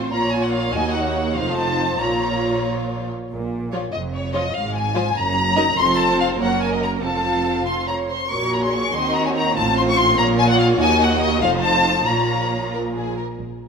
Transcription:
Already playing: double bass section A1, cello section A2, viola section C4 F4, violin section F4 C5
0.12 double bass section A#1, cello section A#2, viola section A#3 F4, violin section F4 C#5 A#5
0.32 violin section G#5
0.42 violin section F#5
0.51 violin section F5
0.72 double bass section D#2, cello section D#2, viola section A#3 D#4, violin section F#4 D#5 G#5
0.93 violin section F#5
1.03 violin section C#5
1.35 double bass section F1, cello section F2, viola section F3 D#4, violin section F4 C5 F5
1.57 violin section A5
2.00 double bass section A#1, cello section A#2, viola section F3 F4, violin section F4 C#5 A#5
3.30 double bass section A#1, cello section A#2
3.73 viola section F3 F4, violin section F4 C#5
3.92 double bass section F1, cello section F2, violin section D#5
4.13 violin section C#5
4.34 viola section F3 F4, violin section F4 C#5 D#5
4.54 double bass section G#1, cello section G#2, violin section F5
4.76 violin section G#5
4.95 viola section F3 F4, violin section F4 C5
5.15 double bass section F#1, cello section F#2, violin section A#5
5.56 viola section F#3 D#4, violin section A#4 D#5
5.77 double bass section F1, cello section F2, viola section C4 F4, violin section A4 C5 C6
5.99 violin section A5
6.20 violin section F5
6.39 double bass section F#1, cello section F#2, viola section A#3 A#4, violin section A#4 C#5 F#5
6.61 violin section G#5
6.72 violin section D#5
6.83 violin section A#5
7.02 double bass section F1, cello section F2, viola section C4 F4, violin section A4 F5 A5
7.66 violin section F4 C6
7.87 violin section C#5 A#5
8.10 violin section C5 C6
8.31 double bass section A#1, cello section A#2, viola section A#3 F#4, violin section A#4 C#5 C#6
8.53 violin section A#5
8.62 violin section G#4 C6
8.74 violin section C#6
8.93 double bass section D#2, cello section D#3, viola section C4 D#4, violin section F#4 D#5 C6
9.15 violin section A#5
9.25 violin section C#5 G#5
9.35 violin section A#5
9.56 double bass section A1, cello section A2, viola section C4 F4, violin section F4 C5 A5
9.78 violin section C6
9.88 violin section C#6
9.97 violin section C6
10.17 double bass section A#1, cello section A#2, viola section A#3 F4, violin section F4 C#5 A#5
10.38 violin section G#5
10.50 violin section F#5
10.59 violin section F5
10.79 double bass section D#2, cello section D#2, viola section A#3 D#4, violin section F#4 D#5 G#5
11.01 violin section F#5
11.22 violin section D#5
11.41 double bass section F1, cello section F2, viola section F3 D#4, violin section F4 C5 F5
11.62 violin section A5
12.07 double bass section A#1, cello section A#2, viola section F3 F4, violin section F4 C#5 A#5
12.74 violin section A#4
12.95 violin section G#4
13.18 violin section A#4
13.38 double bass section A#1

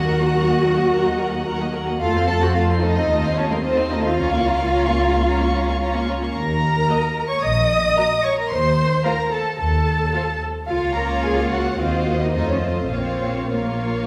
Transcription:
Already playing: double bass section D#2, cello section F#4, violin section F#5
0.07 viola section F#3 A#4, violin section F#5 A#5
0.21 viola section A#3 F#4, violin section D#5 F#5
0.35 viola section F#3 A#4, violin section F#5 A#5
0.49 viola section A#3 F#4, violin section D#5 F#5
0.62 viola section F#3 A#4, violin section F#5 A#5
0.76 viola section A#3 F#4, violin section D#5 F#5
0.91 viola section F#3 A#4, violin section F#5 A#5
1.04 viola section A#3 F#4, violin section D#5 F#5
1.18 viola section F#3 A#4, violin section F#5 A#5
1.31 viola section A#3 F#4, violin section D#5 F#5
1.46 viola section F#3 A#4, violin section F#5 A#5
1.59 viola section A#3 F#4, violin section D#5 F#5
1.74 viola section F#3 A#4, violin section F#5 A#5
1.87 viola section A#3 F#4, violin section D#5 F#5
2.01 double bass section F2, viola section A3 F4, cello section F4, violin section A4 F5 A5
2.14 viola section C4 A4, violin section C5 C6
2.28 viola section A3 F4, cello section A4, violin section A4 A5
2.42 viola section C4 A4, cello section F#4, violin section C5 F#5 C6
2.54 viola section A3 F4, cello section F4, violin section A4 F5 A5
2.69 viola section C4 A4, violin section C5 C6
2.82 viola section A3 F4, cello section D#4, violin section A4 D#5 A5
2.96 viola section C4 A4, violin section C5 C6
3.10 double bass section D#2, viola section A3 F4, violin section D#5 A5
3.23 viola section C4 D#4, violin section F5 C6
3.36 viola section A3 F4, cello section C#4, violin section C#5 D#5 A5
3.50 cello section A#3, viola section C4 D#4, violin section A#4 F5 C6
3.63 viola section A3 F4, cello section C4, violin section C5 D#5 A5
3.77 viola section C4 D#4, violin section F5 C6
3.90 viola section A3 F4, cello section D#4, violin section D#5 A5
4.04 viola section C4 D#4, cello section F4, violin section F5 C6
4.18 double bass section C#2, viola section C#4 F4, violin section C#5 A#5
4.32 viola section A#3 C#4, violin section F5 C#6
4.45 viola section C#4 F4, violin section C#5 A#5
4.59 viola section A#3 C#4, violin section F5 C#6
4.73 viola section C#4 F4, violin section C#5 A#5
4.86 viola section A#3 C#4, violin section F5 C#6
5.00 viola section C#4 F4, violin section C#5 A#5
5.14 viola section A#3 C#4, violin section F5 C#6
5.27 viola section C#4 F4, violin section C#5 A#5
5.40 viola section A#3 C#4, violin section F5 C#6
5.53 viola section C#4 F4, violin section C#5 A#5
5.67 viola section A#3 C#4, violin section F5 C#6
5.80 viola section C#4 F4, violin section C#5 A#5
5.93 viola section A#3 C#4, violin section F5 C#6
6.08 viola section C#4 F4, violin section C#5 A#5
6.21 viola section A#3 C#4, violin section F5 C#6
6.36 double bass section D#2, cello section A#4, violin section A#5
6.89 viola section A#3 F#4, violin section D#5 A#5
7.30 cello section C#5, violin section C#6
7.43 double bass section A#1, cello section D#5, violin section D#6
7.96 viola section A#3 F#4, violin section D#5 A#5
8.24 cello section C#5, violin section C#6
8.38 cello section A#4, violin section A#5
8.50 double bass section D#2, cello section C5, violin section C6
9.05 viola section A3 F4, cello section A#4, violin section C5 F5 A#5
9.32 cello section A4, violin section A5
9.59 double bass section D#2, cello section A4, violin section A5
10.14 viola section A3 F4, violin section C5 F5
10.68 double bass section C#2, viola section A#3 F4, cello section F4, violin section C#5 F5
10.95 cello section A#4, violin section A#5
11.23 cello section G#4, violin section G#5
11.36 cello section F4, violin section F5
11.50 cello section F#4, violin section F#5
11.78 double bass section D#2, viola section C4 F#4, cello section F4, violin section C5 D#5 F5
12.06 viola section A#3
12.21 cello section D#4, violin section D#5
12.34 double bass section F2, viola section A3 F4, cello section D#4, violin section C5 D#5
12.49 cello section C#4, violin section C#5
12.63 cello section C4, violin section C5
12.92 double bass section A#1, viola section A#3 F4, cello section C4, violin section C5 C#5 F5
13.52 viola section A#3 F4, cello section A#3, violin section A#4 C#5 F5

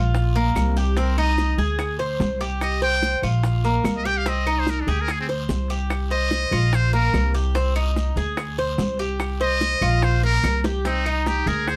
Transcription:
Already playing: upright bass A#1, cuban tres F4
0.15 high bongo, long guiro, maracas
0.35 cuban tres A#3, high bongo, maracas
0.55 upright bass C2, high bongo, low bongo, short guiro, claves, maracas
0.76 cuban tres G4, short guiro, maracas
0.97 cuban tres C4, muted trumpet A#4, high bongo, long guiro, maracas
1.17 cuban tres D#4, muted trumpet D#5, high bongo, claves, maracas
1.38 high bongo, short guiro, maracas
1.58 upright bass D2, cuban tres G#4, high bongo, short guiro, maracas
1.79 high bongo, long guiro, claves, maracas
1.99 cuban tres C5, high bongo, maracas
2.20 upright bass C2, high bongo, low bongo, short guiro, maracas
2.41 cuban tres G4, short guiro, maracas
2.61 muted trumpet D#5, high bongo, long guiro, claves, maracas
2.82 cuban tres C5, muted trumpet G5, high bongo, maracas
3.02 high bongo, short guiro, maracas
3.22 upright bass A#1, cuban tres F4, high bongo, short guiro, claves, maracas
3.43 high bongo, long guiro, maracas
3.64 cuban tres A#3, high bongo, maracas
3.84 upright bass C2, high bongo, low bongo, short guiro, claves, maracas
3.97 muted trumpet D#5
4.05 cuban tres G4, muted trumpet G5, short guiro, maracas
4.18 muted trumpet F5
4.26 cuban tres C4, muted trumpet D#5, high bongo, long guiro, maracas
4.46 cuban tres D#4, high bongo, claves, maracas
4.59 muted trumpet C5
4.67 muted trumpet A#4, high bongo, short guiro, maracas
4.81 muted trumpet D4
4.87 upright bass D2, muted trumpet G4, cuban tres G#4, high bongo, short guiro, maracas
5.01 muted trumpet A#4
5.08 muted trumpet G#4, high bongo, long guiro, claves, maracas
5.21 muted trumpet C4
5.29 cuban tres C5, high bongo, maracas
5.49 upright bass C2, high bongo, low bongo, short guiro, maracas
5.70 cuban tres G4, short guiro, maracas
5.90 high bongo, long guiro, claves, maracas
6.11 cuban tres C5, muted trumpet D#5, high bongo, maracas
6.31 high bongo, short guiro, maracas
6.51 upright bass A#1, cuban tres F4, high bongo, short guiro, claves, maracas
6.73 muted trumpet C5, high bongo, long guiro, maracas
6.93 cuban tres A#3, muted trumpet A#4, high bongo, maracas
7.13 upright bass C2, high bongo, low bongo, short guiro, claves, maracas
7.34 cuban tres G4, short guiro, maracas
7.55 cuban tres C4, high bongo, long guiro, maracas
7.76 cuban tres D#4, high bongo, claves, maracas
7.96 high bongo, short guiro, maracas
8.16 upright bass D2, cuban tres G#4, high bongo, short guiro, maracas
8.37 high bongo, long guiro, claves, maracas
8.58 cuban tres C5, high bongo, maracas
8.78 upright bass C2, high bongo, low bongo, short guiro, maracas
8.99 cuban tres G4, short guiro, maracas
9.20 high bongo, long guiro, claves, maracas
9.40 cuban tres C5, muted trumpet D#5, high bongo, maracas
9.61 high bongo, short guiro, maracas
9.81 upright bass A#1, cuban tres F4, high bongo, short guiro, claves, maracas
10.02 muted trumpet C5, high bongo, long guiro, maracas
10.23 cuban tres A#3, muted trumpet A#4, high bongo, maracas
10.44 upright bass C2, high bongo, low bongo, short guiro, claves, maracas
10.64 cuban tres G4, high bongo, short guiro, maracas
10.85 cuban tres C4, muted trumpet D#4, high bongo, long guiro, maracas
11.06 cuban tres D#4, high bongo, claves, maracas
11.26 muted trumpet G4, high bongo, short guiro, maracas
11.46 upright bass D2, cuban tres G#4, muted trumpet A#4, high bongo, short guiro, maracas
11.68 muted trumpet C5, high bongo, long guiro, claves, maracas

